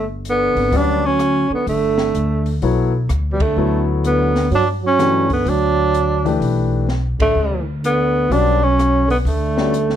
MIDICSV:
0, 0, Header, 1, 7, 480
1, 0, Start_track
1, 0, Tempo, 473934
1, 1695, Time_signature, 4, 2, 24, 8
1, 10090, End_track
2, 0, Start_track
2, 0, Title_t, "Grand piano"
2, 0, Program_c, 0, 0
2, 736, Note_on_c, 0, 55, 52
2, 737, Note_on_c, 0, 66, 47
2, 741, Note_on_c, 0, 61, 50
2, 743, Note_on_c, 0, 74, 63
2, 746, Note_on_c, 0, 71, 47
2, 1019, Note_off_c, 0, 55, 0
2, 1020, Note_off_c, 0, 66, 0
2, 1022, Note_off_c, 0, 61, 0
2, 1023, Note_off_c, 0, 74, 0
2, 1024, Note_off_c, 0, 71, 0
2, 2659, Note_on_c, 0, 59, 56
2, 2664, Note_on_c, 0, 54, 62
2, 2665, Note_on_c, 0, 69, 52
2, 2666, Note_on_c, 0, 73, 63
2, 2668, Note_on_c, 0, 64, 56
2, 2940, Note_off_c, 0, 59, 0
2, 2943, Note_off_c, 0, 54, 0
2, 2943, Note_off_c, 0, 69, 0
2, 2944, Note_off_c, 0, 73, 0
2, 2945, Note_off_c, 0, 64, 0
2, 3621, Note_on_c, 0, 54, 50
2, 3622, Note_on_c, 0, 59, 46
2, 3624, Note_on_c, 0, 69, 48
2, 3626, Note_on_c, 0, 73, 57
2, 3627, Note_on_c, 0, 64, 45
2, 4349, Note_off_c, 0, 54, 0
2, 4350, Note_off_c, 0, 59, 0
2, 4351, Note_off_c, 0, 69, 0
2, 4352, Note_off_c, 0, 73, 0
2, 4353, Note_off_c, 0, 64, 0
2, 5056, Note_on_c, 0, 57, 45
2, 5058, Note_on_c, 0, 52, 50
2, 5059, Note_on_c, 0, 62, 49
2, 5060, Note_on_c, 0, 67, 46
2, 5061, Note_on_c, 0, 71, 59
2, 5338, Note_off_c, 0, 57, 0
2, 5339, Note_off_c, 0, 52, 0
2, 5340, Note_off_c, 0, 62, 0
2, 5340, Note_off_c, 0, 67, 0
2, 5341, Note_off_c, 0, 71, 0
2, 6328, Note_on_c, 0, 57, 56
2, 6328, Note_on_c, 0, 62, 59
2, 6330, Note_on_c, 0, 52, 60
2, 6334, Note_on_c, 0, 67, 59
2, 6334, Note_on_c, 0, 71, 63
2, 6940, Note_off_c, 0, 57, 0
2, 6940, Note_off_c, 0, 62, 0
2, 6941, Note_off_c, 0, 52, 0
2, 6943, Note_off_c, 0, 67, 0
2, 6943, Note_off_c, 0, 71, 0
2, 8422, Note_on_c, 0, 61, 49
2, 8423, Note_on_c, 0, 66, 51
2, 8424, Note_on_c, 0, 71, 51
2, 8424, Note_on_c, 0, 74, 59
2, 8425, Note_on_c, 0, 55, 50
2, 8701, Note_off_c, 0, 61, 0
2, 8702, Note_off_c, 0, 66, 0
2, 8702, Note_off_c, 0, 74, 0
2, 8703, Note_off_c, 0, 55, 0
2, 8703, Note_off_c, 0, 71, 0
2, 9695, Note_on_c, 0, 61, 53
2, 9697, Note_on_c, 0, 71, 47
2, 9698, Note_on_c, 0, 55, 51
2, 9703, Note_on_c, 0, 66, 46
2, 9704, Note_on_c, 0, 74, 62
2, 9840, Note_off_c, 0, 61, 0
2, 9841, Note_off_c, 0, 71, 0
2, 9842, Note_off_c, 0, 55, 0
2, 9845, Note_off_c, 0, 66, 0
2, 9845, Note_off_c, 0, 74, 0
2, 10090, End_track
3, 0, Start_track
3, 0, Title_t, "Tenor saxophone"
3, 0, Program_c, 1, 66
3, 299, Note_on_c, 1, 59, 85
3, 771, Note_on_c, 1, 62, 95
3, 786, Note_off_c, 1, 59, 0
3, 1073, Note_on_c, 1, 61, 90
3, 1088, Note_off_c, 1, 62, 0
3, 1541, Note_off_c, 1, 61, 0
3, 1557, Note_on_c, 1, 59, 69
3, 1698, Note_off_c, 1, 59, 0
3, 1711, Note_on_c, 1, 57, 72
3, 2622, Note_off_c, 1, 57, 0
3, 3370, Note_on_c, 1, 55, 68
3, 3466, Note_on_c, 1, 57, 83
3, 3481, Note_off_c, 1, 55, 0
3, 3938, Note_off_c, 1, 57, 0
3, 4116, Note_on_c, 1, 59, 87
3, 4552, Note_off_c, 1, 59, 0
3, 4608, Note_on_c, 1, 62, 90
3, 4742, Note_off_c, 1, 62, 0
3, 4928, Note_on_c, 1, 61, 94
3, 5356, Note_off_c, 1, 61, 0
3, 5401, Note_on_c, 1, 59, 72
3, 5559, Note_on_c, 1, 62, 89
3, 5574, Note_off_c, 1, 59, 0
3, 6506, Note_off_c, 1, 62, 0
3, 7309, Note_on_c, 1, 57, 87
3, 7746, Note_off_c, 1, 57, 0
3, 7956, Note_on_c, 1, 59, 87
3, 8426, Note_on_c, 1, 62, 95
3, 8442, Note_off_c, 1, 59, 0
3, 8743, Note_on_c, 1, 61, 85
3, 8758, Note_off_c, 1, 62, 0
3, 9216, Note_off_c, 1, 61, 0
3, 9221, Note_on_c, 1, 59, 70
3, 9292, Note_off_c, 1, 59, 0
3, 9387, Note_on_c, 1, 57, 78
3, 10090, Note_off_c, 1, 57, 0
3, 10090, End_track
4, 0, Start_track
4, 0, Title_t, "Trombone"
4, 0, Program_c, 2, 57
4, 289, Note_on_c, 2, 50, 75
4, 753, Note_on_c, 2, 54, 86
4, 768, Note_off_c, 2, 50, 0
4, 1063, Note_off_c, 2, 54, 0
4, 1063, Note_on_c, 2, 54, 74
4, 1525, Note_off_c, 2, 54, 0
4, 1531, Note_on_c, 2, 50, 64
4, 1684, Note_off_c, 2, 50, 0
4, 1697, Note_on_c, 2, 50, 65
4, 2615, Note_off_c, 2, 50, 0
4, 3356, Note_on_c, 2, 47, 57
4, 3455, Note_on_c, 2, 50, 77
4, 3470, Note_off_c, 2, 47, 0
4, 3932, Note_off_c, 2, 50, 0
4, 4090, Note_on_c, 2, 50, 76
4, 4538, Note_off_c, 2, 50, 0
4, 4570, Note_on_c, 2, 54, 78
4, 4712, Note_off_c, 2, 54, 0
4, 4884, Note_on_c, 2, 54, 78
4, 5333, Note_off_c, 2, 54, 0
4, 5370, Note_on_c, 2, 50, 66
4, 5535, Note_on_c, 2, 54, 81
4, 5550, Note_off_c, 2, 50, 0
4, 6494, Note_off_c, 2, 54, 0
4, 7286, Note_on_c, 2, 50, 68
4, 7733, Note_off_c, 2, 50, 0
4, 7924, Note_on_c, 2, 50, 73
4, 8402, Note_on_c, 2, 54, 80
4, 8417, Note_off_c, 2, 50, 0
4, 8708, Note_off_c, 2, 54, 0
4, 8708, Note_on_c, 2, 54, 83
4, 9187, Note_off_c, 2, 54, 0
4, 9193, Note_on_c, 2, 50, 60
4, 9271, Note_off_c, 2, 50, 0
4, 9367, Note_on_c, 2, 50, 68
4, 10090, Note_off_c, 2, 50, 0
4, 10090, End_track
5, 0, Start_track
5, 0, Title_t, "Upright bass"
5, 0, Program_c, 3, 32
5, 0, Note_on_c, 3, 31, 78
5, 523, Note_off_c, 3, 31, 0
5, 557, Note_on_c, 3, 32, 59
5, 717, Note_off_c, 3, 32, 0
5, 722, Note_on_c, 3, 38, 72
5, 1483, Note_off_c, 3, 38, 0
5, 1686, Note_on_c, 3, 31, 74
5, 2136, Note_off_c, 3, 31, 0
5, 2169, Note_on_c, 3, 38, 73
5, 2618, Note_off_c, 3, 38, 0
5, 2654, Note_on_c, 3, 35, 70
5, 3101, Note_off_c, 3, 35, 0
5, 3134, Note_on_c, 3, 38, 66
5, 3581, Note_off_c, 3, 38, 0
5, 3610, Note_on_c, 3, 38, 75
5, 4531, Note_off_c, 3, 38, 0
5, 4568, Note_on_c, 3, 43, 68
5, 5490, Note_off_c, 3, 43, 0
5, 5524, Note_on_c, 3, 38, 79
5, 6448, Note_off_c, 3, 38, 0
5, 6484, Note_on_c, 3, 35, 68
5, 7243, Note_off_c, 3, 35, 0
5, 7286, Note_on_c, 3, 33, 66
5, 7437, Note_off_c, 3, 33, 0
5, 7443, Note_on_c, 3, 38, 77
5, 8368, Note_off_c, 3, 38, 0
5, 8405, Note_on_c, 3, 35, 70
5, 9329, Note_off_c, 3, 35, 0
5, 9369, Note_on_c, 3, 38, 80
5, 10090, Note_off_c, 3, 38, 0
5, 10090, End_track
6, 0, Start_track
6, 0, Title_t, "Muted upright bass strokes"
6, 1517, Note_on_c, 9, 29, 39
6, 1619, Note_off_c, 9, 29, 0
6, 10090, End_track
7, 0, Start_track
7, 0, Title_t, "Drums"
7, 253, Note_on_c, 9, 42, 42
7, 354, Note_off_c, 9, 42, 0
7, 573, Note_on_c, 9, 46, 32
7, 674, Note_off_c, 9, 46, 0
7, 732, Note_on_c, 9, 46, 39
7, 833, Note_off_c, 9, 46, 0
7, 1208, Note_on_c, 9, 37, 52
7, 1210, Note_on_c, 9, 42, 46
7, 1309, Note_off_c, 9, 37, 0
7, 1311, Note_off_c, 9, 42, 0
7, 1693, Note_on_c, 9, 46, 39
7, 1794, Note_off_c, 9, 46, 0
7, 2002, Note_on_c, 9, 38, 53
7, 2104, Note_off_c, 9, 38, 0
7, 2174, Note_on_c, 9, 42, 46
7, 2275, Note_off_c, 9, 42, 0
7, 2490, Note_on_c, 9, 46, 30
7, 2591, Note_off_c, 9, 46, 0
7, 2653, Note_on_c, 9, 46, 37
7, 2754, Note_off_c, 9, 46, 0
7, 3133, Note_on_c, 9, 37, 53
7, 3135, Note_on_c, 9, 42, 48
7, 3234, Note_off_c, 9, 37, 0
7, 3236, Note_off_c, 9, 42, 0
7, 3444, Note_on_c, 9, 51, 56
7, 3446, Note_on_c, 9, 36, 66
7, 3546, Note_off_c, 9, 51, 0
7, 3547, Note_off_c, 9, 36, 0
7, 4096, Note_on_c, 9, 42, 45
7, 4197, Note_off_c, 9, 42, 0
7, 4412, Note_on_c, 9, 38, 42
7, 4414, Note_on_c, 9, 46, 32
7, 4513, Note_off_c, 9, 38, 0
7, 4515, Note_off_c, 9, 46, 0
7, 4573, Note_on_c, 9, 46, 39
7, 4674, Note_off_c, 9, 46, 0
7, 5055, Note_on_c, 9, 37, 53
7, 5055, Note_on_c, 9, 38, 36
7, 5058, Note_on_c, 9, 42, 45
7, 5157, Note_off_c, 9, 37, 0
7, 5157, Note_off_c, 9, 38, 0
7, 5159, Note_off_c, 9, 42, 0
7, 5365, Note_on_c, 9, 46, 31
7, 5367, Note_on_c, 9, 36, 42
7, 5467, Note_off_c, 9, 46, 0
7, 5469, Note_off_c, 9, 36, 0
7, 5533, Note_on_c, 9, 46, 37
7, 5635, Note_off_c, 9, 46, 0
7, 6020, Note_on_c, 9, 42, 42
7, 6121, Note_off_c, 9, 42, 0
7, 6338, Note_on_c, 9, 46, 31
7, 6439, Note_off_c, 9, 46, 0
7, 6500, Note_on_c, 9, 46, 38
7, 6602, Note_off_c, 9, 46, 0
7, 6974, Note_on_c, 9, 38, 36
7, 7076, Note_off_c, 9, 38, 0
7, 7289, Note_on_c, 9, 36, 66
7, 7291, Note_on_c, 9, 51, 57
7, 7390, Note_off_c, 9, 36, 0
7, 7393, Note_off_c, 9, 51, 0
7, 7942, Note_on_c, 9, 42, 46
7, 8043, Note_off_c, 9, 42, 0
7, 8422, Note_on_c, 9, 46, 41
7, 8523, Note_off_c, 9, 46, 0
7, 8905, Note_on_c, 9, 37, 54
7, 8907, Note_on_c, 9, 42, 45
7, 9007, Note_off_c, 9, 37, 0
7, 9009, Note_off_c, 9, 42, 0
7, 9220, Note_on_c, 9, 46, 35
7, 9321, Note_off_c, 9, 46, 0
7, 9384, Note_on_c, 9, 46, 41
7, 9486, Note_off_c, 9, 46, 0
7, 9699, Note_on_c, 9, 38, 43
7, 9800, Note_off_c, 9, 38, 0
7, 9862, Note_on_c, 9, 42, 46
7, 9964, Note_off_c, 9, 42, 0
7, 10025, Note_on_c, 9, 38, 28
7, 10090, Note_off_c, 9, 38, 0
7, 10090, End_track
0, 0, End_of_file